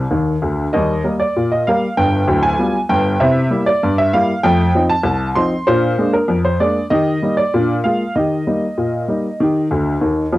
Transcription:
Already playing: D5
0.11 D#2 D#3
0.42 D2 D3
0.73 D#2 G3 D#5
1.04 G3 A#3 A#4
1.20 D5
1.36 A#2
1.52 D#5
1.67 G3 A#3 A#4 F5
1.97 G1 G2 G5
2.28 D1 D2
2.43 G#5
2.59 G3 B3 F4
2.89 G1 G2 G5
3.20 C3 E4 E5
3.51 G3 A#3 E4
3.66 D5
3.83 G2
3.98 E5
4.13 G3 A#3 E4 F5
4.43 F2 A3 G5
4.75 F3 C4 D#4
4.89 A5
5.03 C2
5.35 F3 C4 D#4 C6
5.67 A#2 D4 C5
5.98 G#3 A#3 D4
6.13 A#4
6.28 F2
6.45 C5
6.60 G#3 A#3 D4 D5
6.90 D#3 G4 D#5
7.22 G3 A#3 D#4
7.37 D5
7.54 A#2 D4
7.84 G#3 A#3 F4 F5
8.15 D#3 G4 D#5
8.47 G3 A#3 D#4
8.78 A#2
9.08 G3 A#3 D#4
9.40 D#3 G4
9.71 D2 D3
10.01 D#2 D#3
10.33 F2 F3

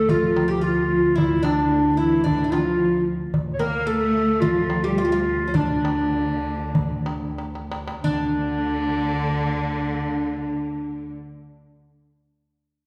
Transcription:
Already playing: D2 A4
0.09 F3 F4, darbuka dum
0.22 darbuka ka
0.36 darbuka tek
0.48 G4
0.61 F3 F4
1.04 darbuka ka
1.15 E3 E4, darbuka dum
1.38 E3
1.43 D3 D4, darbuka tek
1.58 darbuka ka
1.86 darbuka ka
1.97 E3 E4
2.24 D3 D4, darbuka dum
2.39 darbuka ka
2.44 E4
2.52 F3 F4, darbuka tek
3.33 D2, darbuka dum
3.54 C#5
3.59 A#3 A#4, darbuka tek
3.73 darbuka ka
3.86 A3 A4
4.01 darbuka ka
4.40 F3 F4, darbuka dum
4.56 darbuka ka
4.70 darbuka tek
4.84 G3 G4
4.98 F3 F4
5.05 G4
5.12 F4
5.41 darbuka ka
5.47 C#4
5.54 D3 D4, darbuka dum
5.85 darbuka tek
6.00 darbuka ka
6.15 darbuka ka
6.29 darbuka ka
6.75 darbuka dum
7.06 darbuka tek
7.38 darbuka tek
7.55 darbuka ka
7.72 darbuka tek
7.88 darbuka ka
8.03 D2 D3 D4, darbuka dum

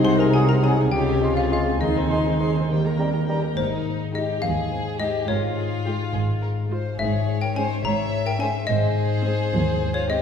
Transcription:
Already playing: C2 C3 G#3 D#4 G#4 D#5
0.03 C3 C4 F#4 C5 F#5 C6
0.18 D#4 G#4 A#4 G#5 A#5
0.32 F#3 G#3 C4 F#4 G#4 F#5 G#5 D#6
0.47 D#4 G#4 A#4 G#5 A#5
0.61 F#3 C4 F#4 G#4 D#5 F#5 G#5 D#6
0.78 D#4 G#4 G#5
0.91 C#2 C#3 C4 C#4 F4 G4 F5 G5
1.07 C4 G#4 G#5
1.21 G#3 C#4 F4 F5 C6
1.34 C4 F4 G#4 F5
1.38 G#5
1.49 G#3 C#4 F4 C5 F5 C6
1.53 F5
1.66 C4 G#4 G#5
1.79 D#2 D#3 G#3 D#4 G#4 D#5
1.83 C6
1.96 C4 C5 G#5
2.10 G#3 D#4 G#4 C6
2.25 C4 C5 G#5
2.39 G#3 D#4 G#4 C5 C6
2.55 C4 C5 G#5
2.68 D#3 G3 A#3 G4 G5
2.84 A#3 A#4 A#5
2.97 G3 A#3 C4 G4 G5 A#5
3.13 A#3 A#4 A#5
3.27 G3 C#4 G4 A#4 G5 A#5
3.40 A#5
3.45 A#3 A#4
3.56 G#1 G#2 D#4 C5
3.85 G#4
4.15 G#3 D#4 G4 D#5
4.42 D#2 G#4 F5
4.71 C5
4.99 G#3 D#4 G4 G#4 D#5
5.28 G#1 G#2 F4 A#4 C#5
5.56 G#4
5.85 G#3 F4 G4
6.13 G#1 G#2 G#4
6.42 A#4 F5
6.71 G#3 F4 G#4 C5
6.98 G#1 G#2 G#4 C#5 E5
7.28 G#4
7.41 A#4 G5
7.54 G#3 C#4 C5 G#5
7.83 G#1 G#2 G#4 C#5 E5 A#5
8.12 C#5
8.25 A#4 G5
8.40 G#3 C#4 G#4 C5 G#5
8.67 G#1 G#2 G#4 C5 D#5
8.97 G#4
9.24 G#3 C4
9.53 D#2 G#4
9.81 C5
9.94 F4 C#5
10.10 G#3 C4 G4 G#4 D#5

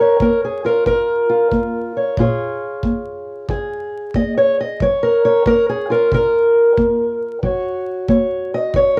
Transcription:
Already playing: A#2 A#4
0.00 C#5
0.20 A#3 A#4, kick
0.44 G#4
0.64 F4 A#4
0.86 F2 A#4, kick
1.29 F4
1.52 A#3, kick
1.97 C#5
2.17 A#2 F4 G#4 C#5, kick
2.83 A#3, kick
3.49 F2 G#4, kick
4.14 A#3 D#5, kick
4.38 C#5
4.60 D#5
4.80 F#3 C#5, kick
5.03 A#4
5.25 C#5
5.46 A#3 A#4, kick
5.69 G#4
5.90 F4 A#4
6.12 C#3 A#4, kick
6.77 A#3, kick
7.43 F#3 F#4 C#5, kick
8.08 A#3 C#5, kick
8.54 D#5
8.74 C#3 C#5, kick

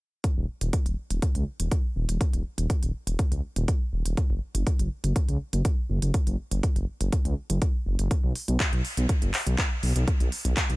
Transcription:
0.24 kick, closed hi-hat
0.37 D#1
0.61 D#1, closed hi-hat
0.73 kick, closed hi-hat
0.86 D#1, closed hi-hat
1.10 D#1, closed hi-hat
1.22 kick, closed hi-hat
1.35 C#2, closed hi-hat
1.60 D#1, closed hi-hat
1.72 kick, closed hi-hat
1.96 D#1
2.09 D#1, closed hi-hat
2.21 kick, closed hi-hat
2.33 D#1, closed hi-hat
2.58 D#1, closed hi-hat
2.70 kick, closed hi-hat
2.83 D#1, closed hi-hat
3.07 D#1, closed hi-hat
3.19 kick, closed hi-hat
3.32 C#2, closed hi-hat
3.56 D#1, closed hi-hat
3.68 kick, closed hi-hat
3.93 D#1
4.05 D#1, closed hi-hat
4.17 kick, closed hi-hat
4.30 F#1
4.55 F#1, closed hi-hat
4.67 kick, closed hi-hat
4.79 F#1, closed hi-hat
5.04 F#1, closed hi-hat
5.16 kick, closed hi-hat
5.28 C#2, closed hi-hat
5.53 F#1, closed hi-hat
5.65 kick, closed hi-hat
5.89 F#1
6.02 F#1, closed hi-hat
6.14 kick, closed hi-hat
6.27 F#1, closed hi-hat
6.51 F#1, closed hi-hat
6.63 kick, closed hi-hat
6.76 F#1, closed hi-hat
7.01 F#1, closed hi-hat
7.13 kick, closed hi-hat
7.25 C#2, closed hi-hat
7.50 F#1, closed hi-hat
7.62 kick, closed hi-hat
7.86 F#1
7.99 F#1, closed hi-hat
8.11 kick, closed hi-hat
8.24 B1
8.36 open hi-hat
8.48 B1, closed hi-hat
8.60 kick, clap, closed hi-hat
8.73 B1, closed hi-hat
8.85 open hi-hat
8.97 B1, closed hi-hat
9.09 kick, closed hi-hat
9.22 F#1, closed hi-hat
9.34 clap, open hi-hat
9.46 B1, closed hi-hat
9.58 kick, clap, closed hi-hat
9.83 B1, open hi-hat
9.96 B1, closed hi-hat
10.08 kick, closed hi-hat
10.20 B1, closed hi-hat
10.32 open hi-hat
10.45 B1, closed hi-hat
10.57 kick, clap, closed hi-hat
10.70 B1, closed hi-hat

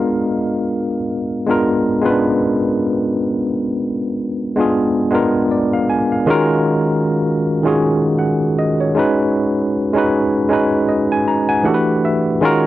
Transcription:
Already playing: G#3 B3 D4 F4 A#4 D#5 F5
1.46 G#3 B3 D4 F4
1.51 A#4
2.02 G#3 B3 C#4 F4 B4
2.10 D4
4.56 G#3 B3 D4 F4
4.60 G#4
5.11 G#3 B3 D4 F4
5.15 A#4
5.51 D5
5.73 F5
5.90 G#5
6.12 F5
6.26 D#3 G#3 C#4 F4 F#4
6.30 A#4
7.63 D#3 G#3 C#4 F4 F#4
7.67 G#4
8.19 F#5
8.59 D#5
8.81 C#5
8.95 G#3 C#4 D#4 F#4
8.99 B4
9.93 G#3 C#4 D#4 F#4
9.98 B4
10.49 G#3 C#4 D#4 F#4
10.53 B4
10.89 D#5
11.12 G#5
11.28 A#5
11.49 F#5 G#5
11.63 E3 A3 D4 F#4 G4 F#5
11.68 A4
11.74 B4
12.05 E5
12.41 D#3 G#3 C#4 F4 F#4
12.45 A#4

